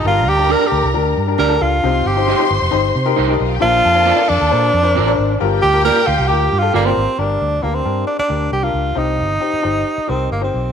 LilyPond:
<<
  \new Staff \with { instrumentName = "String section" } { \time 4/4 \key g \minor \tempo 4 = 135 <bes' bes''>2.~ <bes' bes''>8 r8 | <c'' c'''>2.~ \tuplet 3/2 { <c'' c'''>16 r16 <d' d''>16 <ees' ees''>16 <f' f''>16 <g' g''>16 } | <a' a''>2.~ <a' a''>8 r8 | <g' g''>2.~ <g' g''>8 r8 |
r1 | r1 | }
  \new Staff \with { instrumentName = "Clean electric guitar" } { \time 4/4 \key g \minor r4 <d' g' bes' d''>8 r4. <d' g' bes' d''>8 r8 | r4 <ees' g' c'' ees''>8 r4. <ees' g' c'' ees''>8 r8 | r4 <c' f' bes' d''>8 r4. <c' f' bes' d''>8 r8 | r4 <bes f' g' d''>8 r4. <bes f' g' d''>8 r8 |
r1 | r1 | }
  \new Staff \with { instrumentName = "Upright piano" } { \time 4/4 \key g \minor <d' g' bes'>8 r16 <d' g' bes'>16 r16 <d' g' a'>8 r16 <d' g' bes'>8 r16 <d' g' bes'>16 r16 <d' g' a'>8 r16 | <ees' g' c''>8 r16 <ees' g' c''>16 r16 <ees' g' c''>8 r16 <ees' g' c''>8 r16 <ees' g' bes'>16 r16 <ees' g' bes'>8 r16 | <d' bes' c''>8 r16 <d' bes' c''>16 r16 <d' bes' d''>8 r16 <d' bes' c''>8 r16 <d' bes' c''>16 r16 <d' bes' c''>8 r16 | <f' g' bes'>8 r16 <f' g' bes'>16 r16 <f' g' bes'>8 r16 <f' g' bes'>8 r16 <f' g' a'>16 r16 <f' g' bes'>8 r16 |
<d' g' bes'>8. r16 <d' g' bes'>16 r16 <d' g' bes'>8. r16 <d' g' bes'>8 r16 <d' g' bes'>8 r16 | <ees' g' c''>8. r16 <ees' g' c''>16 r16 <ees' g' c''>8. r16 <ees' g' bes'>8 r16 <ees' g' c''>8 r16 | }
  \new Staff \with { instrumentName = "Upright piano" } { \clef bass \time 4/4 \key g \minor g,4. r2 r8 | c4. r2 r8 | bes,4. r2 r8 | g,4. r2 r8 |
g,4. r2 r8 | c4. r2 r8 | }
  \new Staff \with { instrumentName = "Tenor saxophone" } { \time 4/4 \key g \minor f'8 g'8 \tuplet 3/2 { bes'8 g'8. r16 } r4 bes'8 f'8~ | f'8 g'4 r2 r8 | f'4. d'2~ d'8 | r8 g'8 bes'8 f'8 \tuplet 3/2 { g'4 f'8 } bes16 c'8. |
d'4 bes16 c'8. d'16 d'8. g'16 f'8. | ees'2~ ees'8 c'8 bes16 c'8. | }
  \new Staff \with { instrumentName = "Fingered electric bass" } { \clef bass \time 4/4 \key g \minor g,,8 d,8. r16 d,16 c,16 d,8 g,8 d,8 cis,8 | c,8 g,,8. r16 g,,16 f,,16 g,,8 c8 c,8 b,,8 | bes,,8 f,8. r16 f,16 ees,16 bes,8 f,8 a,,8 aes,,8 | g,,8 d,8. r16 d,16 c,16 d,8 g,8 g,,8 aes,,16 r16 |
g,,8 d,8 d,8 g,8 r8 d,8 c,8 cis,8 | c,8 g,,8 r8 g,,8 r8 c,8 g,,8 b,,8 | }
>>